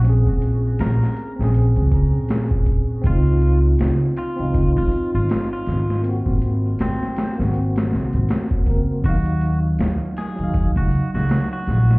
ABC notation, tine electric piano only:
X:1
M:4/4
L:1/16
Q:"Swing 16ths" 1/4=80
K:Ebdor
V:1 name="Tine electric piano"
[CDA]6- [CDA] [CDA]8- [CDA] | [CEF]6- [CEF] [CEF]8- [CEF] | [B,CG]6- [B,CG] [B,CG]6- [B,CG] [B,CB]2 | [G,Ef]6- [G,Ef] [G,Ef]8- [G,Ef] |]